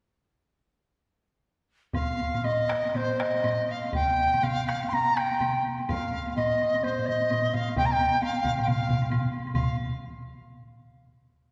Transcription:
1.93 dizi F5, taiko, taiko low-mid, taiko high, high woodblock
2.18 taiko high, high woodblock
2.34 taiko low-mid, taiko high, high woodblock
2.44 dizi D#5, taiko low-mid, taiko high, high woodblock
2.69 taiko rim, high woodblock
2.84 taiko high, high woodblock
2.94 dizi C5, taiko low-mid, taiko high, high woodblock
3.19 dizi D#5, taiko rim, high woodblock
3.34 taiko high, high woodblock
3.44 taiko low-mid, taiko high, high woodblock
3.68 dizi F5, high woodblock
3.83 taiko high, high woodblock
3.93 dizi G5, taiko, taiko mid, taiko high, high woodblock
4.18 taiko high, high woodblock
4.33 taiko mid, taiko high, high woodblock
4.43 dizi F5, taiko mid, taiko high, high woodblock
4.67 taiko rim, high woodblock
4.82 taiko high, high woodblock
4.88 dizi C6
4.92 dizi A#5, taiko mid, taiko high, high woodblock
5.17 dizi G5, taiko rim, high woodblock
5.31 taiko high, high woodblock
5.40 taiko mid, taiko high, high woodblock
5.66 high woodblock
5.79 taiko high, high woodblock
5.89 dizi F5, taiko, taiko low-mid, taiko high, high woodblock
6.13 taiko high, high woodblock
6.27 taiko high, high woodblock
6.36 dizi D#5, taiko low-mid, taiko high, high woodblock
6.61 high woodblock
6.74 taiko high, high woodblock
6.83 dizi C5, taiko low-mid, taiko high, high woodblock
6.99 taiko low-mid
7.06 dizi D#5, taiko low-mid, high woodblock
7.20 taiko high, high woodblock
7.30 taiko low-mid, taiko high, high woodblock
7.53 dizi F5, taiko low-mid, high woodblock
7.68 taiko high, high woodblock
7.76 dizi G5, taiko, taiko low-mid, taiko mid, taiko high, high woodblock
7.85 dizi A#5
7.92 dizi G5
8.00 taiko high, high woodblock
8.14 taiko high, high woodblock
8.21 dizi F5, taiko high, high woodblock
8.44 taiko, taiko low-mid, taiko mid, high woodblock
8.58 taiko low-mid, taiko mid, taiko high, high woodblock
8.62 dizi G5
8.67 dizi F5, taiko low-mid, taiko mid, taiko high, high woodblock
8.89 taiko, taiko low-mid, taiko mid, high woodblock
9.02 taiko high, high woodblock
9.10 taiko low-mid, taiko mid, taiko high, high woodblock
9.33 high woodblock
9.46 taiko high, high woodblock
9.54 dizi F5, taiko, taiko low-mid, taiko mid, taiko high, high woodblock

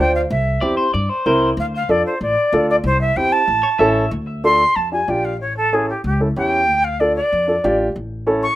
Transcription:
0.00 upright bass D2, upright piano D4 F4 C5, flute G5
0.15 flute F5
0.30 upright bass C2, flute E5
0.61 upright bass E2, upright piano C4 E4 G4, clean electric guitar D5
0.77 clean electric guitar C5
0.94 upright bass G2, clean electric guitar D5
1.09 clean electric guitar C5
1.26 upright bass C2, upright piano C4 E4 A#4, clean electric guitar C5
1.57 upright bass D2, flute F5
1.75 flute F5
1.89 upright bass F2, upright piano D4 F4 A4, flute D5
2.06 flute C5
2.21 upright bass A1, flute D5
2.52 upright bass D2, upright piano D4 F4 A4
2.70 flute D5
2.84 upright bass C2, flute C5
3.01 flute E5
3.16 upright bass E2, upright piano C4 E4 G4, flute G5
3.32 flute A5
3.48 upright bass A1
3.63 clean electric guitar C#5
3.79 upright bass A1, upright piano C#4 E4 A4, clean electric guitar E5
4.11 upright bass D2
4.44 upright piano D4 F4 A4, flute C6
4.75 upright bass F2, flute A5
4.92 upright piano D4 F4 G4, flute G#5
5.08 upright bass A#1, upright piano D4 F4 G4, flute G5
5.24 flute F5
5.40 upright bass A1, flute C#5
5.56 flute A4
5.73 upright piano C#4 E4 A4, flute G#4
5.89 flute G4
6.04 upright bass C#2, flute G4
6.20 upright piano C#4 E4 A4
6.36 upright bass E2, upright piano C#4 E4 G4, flute G5
6.69 upright bass D2
6.84 flute F5
7.00 upright piano D4 F4 A4, flute D5
7.15 flute D5
7.32 upright bass F2
7.48 upright piano D4 F4 A4
7.64 upright bass A1, upright piano D4 F4 G4
7.96 upright bass A1
8.27 upright piano C#4 E4 A4
8.42 flute C#6

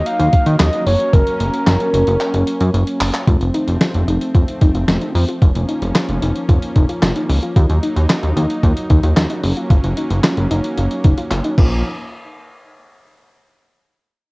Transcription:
Already playing: analog synth pad F#3 A#3 D#4
0.06 soft synth lead F5, closed hi-hat
0.19 analog synth bass D#2, closed hi-hat
0.33 kick, closed hi-hat
0.46 analog synth bass D#3, closed hi-hat
0.60 analog synth bass D#2, soft synth lead D#5, snare, clap, closed hi-hat
0.73 closed hi-hat
0.86 analog synth bass F#1, analog synth pad C#4, soft synth lead C#5, open hi-hat
1.00 closed hi-hat
1.13 analog synth bass F#1, soft synth lead A#4, kick, closed hi-hat
1.27 closed hi-hat
1.40 analog synth bass F#1, closed hi-hat
1.54 closed hi-hat
1.67 analog synth bass F#1, snare, clap, closed hi-hat
1.80 closed hi-hat
1.94 analog synth bass F#1, closed hi-hat
2.07 analog synth bass F#1, closed hi-hat
2.20 clap, closed hi-hat
2.34 analog synth bass F#1, closed hi-hat
2.47 closed hi-hat
2.60 analog synth bass F#2, closed hi-hat
2.74 analog synth bass F#1, closed hi-hat
2.87 closed hi-hat
3.01 analog synth bass F#1, clap, open hi-hat
3.14 clap, closed hi-hat
3.27 analog synth bass F1, analog synth pad F3 A3 C4, synth pluck F4, kick, closed hi-hat
3.41 analog synth bass F1, closed hi-hat
3.54 synth pluck D#4, closed hi-hat
3.68 analog synth bass F1, closed hi-hat
3.81 synth pluck F4, snare, closed hi-hat
3.94 analog synth bass F1, closed hi-hat
4.08 analog synth bass F1, synth pluck D#4, closed hi-hat
4.21 closed hi-hat
4.35 analog synth bass F1, synth pluck F4, kick, closed hi-hat
4.48 closed hi-hat
4.61 analog synth bass F1, synth pluck D#4, kick, closed hi-hat
4.75 analog synth bass F1, synth pluck F4, closed hi-hat
4.88 analog synth bass F1, synth pluck F4, snare, closed hi-hat
5.01 synth pluck D#4, closed hi-hat
5.15 analog synth bass F2, open hi-hat
5.28 synth pluck F4, closed hi-hat
5.42 analog synth bass F1, analog synth pad A#3 C#4, synth pluck F4, kick, closed hi-hat
5.55 analog synth bass F1, closed hi-hat
5.69 synth pluck D#4, closed hi-hat
5.82 analog synth bass F1, closed hi-hat
5.95 synth pluck F4, snare, clap, closed hi-hat
6.09 analog synth bass F1, closed hi-hat
6.22 analog synth bass F1, synth pluck D#4, closed hi-hat
6.36 closed hi-hat
6.49 analog synth bass F1, synth pluck F4, kick, closed hi-hat
6.62 closed hi-hat
6.76 analog synth bass F1, synth pluck D#4, kick, closed hi-hat
6.89 synth pluck F4, closed hi-hat
7.02 analog synth bass F1, synth pluck F4, snare, clap, closed hi-hat
7.16 synth pluck D#4, closed hi-hat
7.29 analog synth bass C#2, open hi-hat
7.43 synth pluck F4, closed hi-hat
7.56 analog synth bass D#2, analog synth pad F#3 D#4, synth pluck F4, kick, closed hi-hat
7.70 analog synth bass D#2, closed hi-hat
7.83 synth pluck D#4, closed hi-hat
7.96 analog synth bass D#2, closed hi-hat
8.10 synth pluck F4, snare, clap, closed hi-hat
8.23 analog synth bass D#2, closed hi-hat
8.36 analog synth bass D#2, synth pluck D#4, closed hi-hat
8.50 closed hi-hat
8.63 analog synth bass D#2, synth pluck F4, kick, closed hi-hat
8.77 closed hi-hat
8.90 analog synth bass D#2, synth pluck D#4, kick, closed hi-hat
9.03 analog synth bass D#2, synth pluck F4, closed hi-hat
9.17 analog synth bass D#2, synth pluck F4, snare, clap, closed hi-hat
9.30 synth pluck D#4, closed hi-hat
9.44 analog synth bass F#1, analog synth pad A#3 C#4, open hi-hat
9.57 synth pluck F4, closed hi-hat
9.70 analog synth bass F#1, synth pluck F4, kick, closed hi-hat
9.84 analog synth bass F#1, closed hi-hat
9.97 synth pluck D#4, closed hi-hat
10.10 analog synth bass F#1, closed hi-hat
10.24 synth pluck F4, snare, clap, closed hi-hat
10.37 analog synth bass F#1, closed hi-hat
10.51 analog synth bass F#1, synth pluck D#4, closed hi-hat
10.64 closed hi-hat
10.77 analog synth bass F#1, synth pluck F4, closed hi-hat
10.91 closed hi-hat
11.04 analog synth bass F#1, synth pluck D#4, kick, closed hi-hat
11.18 synth pluck F4, closed hi-hat
11.31 analog synth bass F#1, synth pluck F4, clap, closed hi-hat
11.44 synth pluck D#4, closed hi-hat
11.58 analog synth bass A#1, analog synth pad F3 A#3 C#4, synth pluck A#3, kick, crash

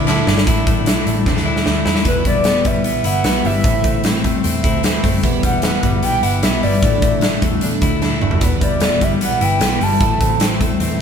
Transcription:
Already playing: picked electric bass D2, clean electric guitar A2 E3 A3 D4, glockenspiel D6
0.07 twelve-string acoustic guitar A2 D3 A3 D4 E4, glockenspiel A5, snare, clap
0.27 picked electric bass G1, twelve-string acoustic guitar A3 D4 E4, snare
0.38 snare
0.47 picked electric bass A1, twelve-string acoustic guitar A2 D3 A3 D4 E4, kick, closed hi-hat
0.67 picked electric bass A1, twelve-string acoustic guitar A3 D4 E4, kick, closed hi-hat
0.86 picked electric bass B1, twelve-string acoustic guitar D3 A3 D4 E4, snare, closed hi-hat
1.06 picked electric bass A1, twelve-string acoustic guitar A3 D4 E4, closed hi-hat
1.26 picked electric bass E2, twelve-string acoustic guitar A2 D3 A3 D4 E4, clean electric guitar C4, kick, snare
1.36 clean electric guitar D4, snare
1.45 picked electric bass D2, twelve-string acoustic guitar A3 D4 E4
1.56 snare
1.66 picked electric bass D2, twelve-string acoustic guitar D3 A3 D4 E4, snare
1.86 picked electric bass E2, twelve-string acoustic guitar A3 D4 E4, snare
1.95 snare
2.05 picked electric bass E1, twelve-string acoustic guitar E2 B2 E3 G3 B3 E4, soft synth lead B4, kick, closed hi-hat
2.25 picked electric bass E1, twelve-string acoustic guitar E3 G3 B3 E4, soft synth lead D5, kick, closed hi-hat
2.44 twelve-string acoustic guitar E2 B2 E3 G3 B3 E4, snare, closed hi-hat
2.65 picked electric bass G1, twelve-string acoustic guitar E3 G3 B3 E4, soft synth lead E5, kick, closed hi-hat
2.84 picked electric bass B1, twelve-string acoustic guitar E3 G3 B3 E4, closed hi-hat
3.04 picked electric bass G1, twelve-string acoustic guitar E3 G3 B3 E4, soft synth lead F#5, closed hi-hat
3.24 picked electric bass B1, twelve-string acoustic guitar E2 B2 E3 G3 B3 E4, snare, closed hi-hat
3.44 picked electric bass G1, twelve-string acoustic guitar E3 G3 B3 E4, soft synth lead E5, open hi-hat
3.64 picked electric bass A1, twelve-string acoustic guitar A2 E3 A3 C4 E4, kick, closed hi-hat
3.84 picked electric bass A1, twelve-string acoustic guitar A3 C4 E4, kick, closed hi-hat
4.03 twelve-string acoustic guitar A2 E3 A3 C4 E4, snare, closed hi-hat
4.24 picked electric bass E2, twelve-string acoustic guitar A3 C4 E4, kick, closed hi-hat
4.43 picked electric bass E2, twelve-string acoustic guitar E3 A3 C4 E4, closed hi-hat
4.63 picked electric bass D2, twelve-string acoustic guitar A3 C4 E4, kick, closed hi-hat
4.83 twelve-string acoustic guitar A2 E3 A3 C4 E4, snare, closed hi-hat
5.03 picked electric bass F#1, twelve-string acoustic guitar A3 C4 E4, kick, open hi-hat
5.23 picked electric bass E1, twelve-string acoustic guitar E2 B2 E3 G3 B3 E4, kick, closed hi-hat
5.43 picked electric bass E1, twelve-string acoustic guitar E3 G3 B3 E4, soft synth lead F#5, kick, closed hi-hat
5.62 twelve-string acoustic guitar E2 B2 E3 G3 B3 E4, snare, closed hi-hat
5.83 picked electric bass G1, twelve-string acoustic guitar E3 G3 B3 E4, kick, closed hi-hat
6.03 picked electric bass B1, twelve-string acoustic guitar E3 G3 B3 E4, soft synth lead G5, closed hi-hat
6.22 picked electric bass G1, twelve-string acoustic guitar E3 G3 B3 E4, soft synth lead F#5, closed hi-hat
6.42 picked electric bass B1, twelve-string acoustic guitar E2 B2 E3 G3 B3 E4, soft synth lead E5, snare, closed hi-hat
6.62 picked electric bass G1, twelve-string acoustic guitar E3 G3 B3 E4, soft synth lead D5, open hi-hat
6.83 picked electric bass A1, twelve-string acoustic guitar A2 D3 A3 D4 E4, kick, closed hi-hat
7.02 picked electric bass A1, twelve-string acoustic guitar A3 D4 E4, kick, closed hi-hat
7.21 twelve-string acoustic guitar A2 D3 A3 D4 E4, snare, closed hi-hat
7.42 picked electric bass E2, twelve-string acoustic guitar A3 D4 E4, kick, closed hi-hat
7.61 picked electric bass E2, twelve-string acoustic guitar D3 A3 D4 E4, closed hi-hat
7.82 picked electric bass D2, twelve-string acoustic guitar A3 D4 E4, kick, closed hi-hat
8.02 twelve-string acoustic guitar A2 D3 A3 D4 E4, snare
8.21 picked electric bass F#1, twelve-string acoustic guitar A3 D4 E4, mid tom
8.31 floor tom
8.41 picked electric bass E1, twelve-string acoustic guitar E2 B2 E3 G3 B3 E4, soft synth lead B4, kick, closed hi-hat
8.61 picked electric bass E1, twelve-string acoustic guitar E3 G3 B3 E4, soft synth lead D5, kick, closed hi-hat
8.80 twelve-string acoustic guitar E2 B2 E3 G3 B3 E4, snare, closed hi-hat
9.00 picked electric bass G1, twelve-string acoustic guitar E3 G3 B3 E4, soft synth lead E5, kick, closed hi-hat
9.21 picked electric bass B1, twelve-string acoustic guitar E3 G3 B3 E4, soft synth lead F#5, closed hi-hat
9.41 picked electric bass G1, twelve-string acoustic guitar E3 G3 B3 E4, soft synth lead G5, closed hi-hat
9.59 picked electric bass B1, twelve-string acoustic guitar E2 B2 E3 G3 B3 E4, snare, closed hi-hat
9.80 picked electric bass G1, twelve-string acoustic guitar E3 G3 B3 E4, soft synth lead A5, open hi-hat
10.00 picked electric bass A1, twelve-string acoustic guitar A2 E3 A3 C4 E4, kick, closed hi-hat
10.20 picked electric bass A1, twelve-string acoustic guitar A3 C4 E4, kick, closed hi-hat
10.40 twelve-string acoustic guitar A2 E3 A3 C4 E4, snare, closed hi-hat
10.60 picked electric bass E2, twelve-string acoustic guitar A3 C4 E4, kick, closed hi-hat
10.80 picked electric bass E2, twelve-string acoustic guitar E3 A3 C4 E4, closed hi-hat

